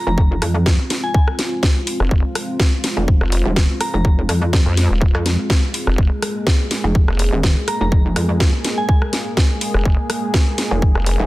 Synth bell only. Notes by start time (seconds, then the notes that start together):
0.07 A#5
1.03 G#5
1.15 G#5
3.81 A#5
3.94 A#5
7.68 A#5
7.81 A#5
8.78 G#5
8.89 G#5